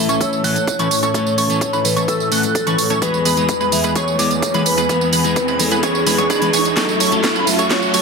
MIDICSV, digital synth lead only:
0, 0, Header, 1, 2, 480
1, 0, Start_track
1, 0, Key_signature, 3, "major"
1, 0, Tempo, 468750
1, 1171, Time_signature, 4, 2, 24, 8
1, 8210, End_track
2, 0, Start_track
2, 0, Title_t, "Digital synth lead"
2, 0, Program_c, 0, 84
2, 92, Note_on_c, 0, 85, 86
2, 183, Note_off_c, 0, 85, 0
2, 212, Note_on_c, 0, 88, 97
2, 423, Note_off_c, 0, 88, 0
2, 453, Note_on_c, 0, 90, 82
2, 784, Note_off_c, 0, 90, 0
2, 813, Note_on_c, 0, 85, 104
2, 1023, Note_off_c, 0, 85, 0
2, 1053, Note_on_c, 0, 85, 90
2, 1144, Note_off_c, 0, 85, 0
2, 1172, Note_on_c, 0, 85, 93
2, 1383, Note_off_c, 0, 85, 0
2, 1412, Note_on_c, 0, 85, 109
2, 1743, Note_off_c, 0, 85, 0
2, 1771, Note_on_c, 0, 83, 87
2, 1905, Note_off_c, 0, 83, 0
2, 2012, Note_on_c, 0, 85, 89
2, 2103, Note_off_c, 0, 85, 0
2, 2133, Note_on_c, 0, 88, 99
2, 2343, Note_off_c, 0, 88, 0
2, 2374, Note_on_c, 0, 90, 85
2, 2704, Note_off_c, 0, 90, 0
2, 2733, Note_on_c, 0, 85, 108
2, 2944, Note_off_c, 0, 85, 0
2, 2972, Note_on_c, 0, 85, 88
2, 3063, Note_off_c, 0, 85, 0
2, 3093, Note_on_c, 0, 83, 96
2, 3303, Note_off_c, 0, 83, 0
2, 3332, Note_on_c, 0, 83, 109
2, 3663, Note_off_c, 0, 83, 0
2, 3691, Note_on_c, 0, 83, 91
2, 3825, Note_off_c, 0, 83, 0
2, 3932, Note_on_c, 0, 83, 87
2, 4023, Note_off_c, 0, 83, 0
2, 4052, Note_on_c, 0, 85, 102
2, 4263, Note_off_c, 0, 85, 0
2, 4291, Note_on_c, 0, 86, 84
2, 4623, Note_off_c, 0, 86, 0
2, 4652, Note_on_c, 0, 83, 106
2, 4863, Note_off_c, 0, 83, 0
2, 4891, Note_on_c, 0, 83, 95
2, 4983, Note_off_c, 0, 83, 0
2, 5011, Note_on_c, 0, 83, 90
2, 5223, Note_off_c, 0, 83, 0
2, 5252, Note_on_c, 0, 83, 105
2, 5583, Note_off_c, 0, 83, 0
2, 5611, Note_on_c, 0, 83, 92
2, 5745, Note_off_c, 0, 83, 0
2, 5852, Note_on_c, 0, 83, 91
2, 5943, Note_off_c, 0, 83, 0
2, 5971, Note_on_c, 0, 85, 99
2, 6183, Note_off_c, 0, 85, 0
2, 6212, Note_on_c, 0, 83, 88
2, 6303, Note_off_c, 0, 83, 0
2, 6331, Note_on_c, 0, 85, 92
2, 6423, Note_off_c, 0, 85, 0
2, 6453, Note_on_c, 0, 83, 112
2, 6656, Note_off_c, 0, 83, 0
2, 6692, Note_on_c, 0, 85, 103
2, 6903, Note_off_c, 0, 85, 0
2, 6932, Note_on_c, 0, 85, 85
2, 7143, Note_off_c, 0, 85, 0
2, 7171, Note_on_c, 0, 85, 101
2, 7502, Note_off_c, 0, 85, 0
2, 7533, Note_on_c, 0, 83, 87
2, 7666, Note_off_c, 0, 83, 0
2, 7771, Note_on_c, 0, 85, 85
2, 7863, Note_off_c, 0, 85, 0
2, 7892, Note_on_c, 0, 85, 89
2, 8103, Note_off_c, 0, 85, 0
2, 8130, Note_on_c, 0, 85, 104
2, 8210, Note_off_c, 0, 85, 0
2, 8210, End_track
0, 0, End_of_file